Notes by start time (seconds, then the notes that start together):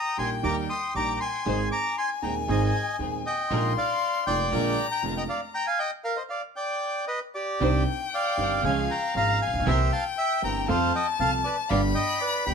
Already playing: G5 A#5 D#6
0.17 A#1 A#2 D#3 G3 A#3 D#4 G4 A#4 G#5 C6
0.43 D#2 D#3 G3 A#3 D#4 G4 A#4 A#5 D6
0.70 C6 D#6
0.94 A#1 A#2 D#3 G3 A#3 D#4 G4 A#4 A#5 D6
1.20 G#5 C6
1.45 G#1 G#2 D#3 G#3 C4 D#4 G#4 C5 G#5
1.72 A#5 D6
1.98 G#5 C6
2.22 D#1 D#2 D#3 G#3 C4 D#4 G#4 C5 G5 A#5
2.48 G#1 G#2 D#3 G#3 C4 D#4 G#4 C5 D#5 G#5
2.99 D#1 D#2 D#3 G#3 C4 D#4 G#4 C5
3.26 D#5 G5
3.50 A#1 A#2 D#3 G#3 A#3 D#4 F4 G#4 A#4 C6
3.78 D5 F5
4.27 F1 F2 D#3 G#3 A#3 D#4 F4 G#4 A#4 D5 G5
4.52 A#1 A#2 D3 G#3 A#3 D4 F4 G#4 A#4 A#5
4.91 G5 A#5
5.03 F1 F2 D3 G#3 A#3 D4 F4 G#4 A#4
5.17 D#5 G5
5.29 D5 F5
5.54 G5 A#5
5.66 F5 G#5
5.79 D#5 G5
6.04 A#4 F5
6.16 C5 D#5
6.29 D5 F5
6.56 D5 G5
7.07 B4 D#5
7.35 G4 D5
7.60 C2 C3 D#3 C4 D4 D#4 G4 C5 G5
8.15 D5 F5
8.37 G1 G2 D#3 C4 D4 D#4 G4 C5
8.63 C#2 C#3 F3 G#3 C#4 F4 G#4 F5 G#5
8.91 G5 A#5
9.14 G#1 G#2 F3 G#3 C#4 F4 G#4 F5 A#5
9.42 F5 G#5
9.47 A1
9.53 A#1
9.60 B1
9.66 C2 C3 E3 A#3 C4 E4 G4 A#4 C5 E5 G5
9.93 F5 A5
10.18 E5 G5
10.42 G1 G2 E3 A#3 C4 E4 G4 A#4 G5 A#5
10.68 F2 F3 A3 C4 F4 A4 C5 F5 A5
10.95 D#5 G5
11.19 C2 C3 F3 A3 C4 F4 A4 F5 A5
11.44 B4 D5
11.69 G1 G2 D3 G3 B3 D4 G4 D5 F5 B5
11.95 D#5 G5
12.20 B4 D5
12.46 D2 D3 G3 B3 D4 G4 G5 B5